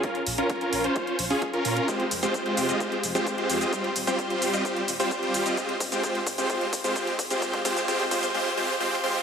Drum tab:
HH |xxoxxxoxxxooxxox|xxoxxxoxxxoxxxox|xxoxxxoxxxooxxox|xxoxxxoxxxoxxxox|
SH |----------------|x-xxx-xxx-xxx-xx|x-xxx-xxx-xxx-xx|x-xxx-xxx-xxx-xx|
BD |o---o---o---o---|o---o---o---o---|o---o---o---o---|o-o-o-o-o-o-o-o-|

HH |xxoxxxox--------|
SH |x-xxx-xx--------|
BD |oooooooo--------|